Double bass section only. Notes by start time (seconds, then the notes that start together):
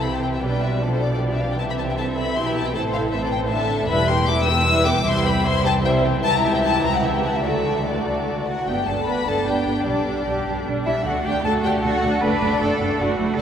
Already playing: C2
0.42 B1
1.59 C2
2.36 B1
2.74 A1
3.90 E1
5.05 C2
6.23 C#2
7.44 D2
8.68 G1
8.87 G1
9.06 G1
9.26 G1
9.46 G1
9.66 G1
9.85 B1
10.05 B1
10.25 B1
10.45 B1
10.65 B1
10.85 B1
11.04 D2
11.24 D2
11.44 D2
11.64 D2
11.83 D2
12.03 D2
12.23 F#1
12.42 F#1
12.61 F#1
12.81 F#1
13.00 F#1
13.20 F#1
13.38 F1